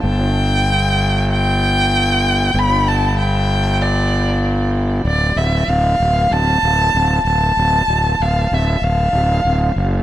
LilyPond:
<<
  \new Staff \with { instrumentName = "Violin" } { \time 4/4 \key d \dorian \tempo 4 = 96 g''2 g''2 | b''8 a''8 g''4 d''4 r4 | d''8 e''8 f''4 a''4. a''8~ | a''4 f''8 e''8 f''4. r8 | }
  \new Staff \with { instrumentName = "Fingered electric bass" } { \clef bass \time 4/4 \key d \dorian g,,1 | g,,1 | d,,8 d,,8 d,,8 d,,8 d,,8 d,,8 d,,8 d,,8 | d,,8 d,,8 d,,8 d,,8 d,,8 d,,8 d,,8 fis,,8 | }
>>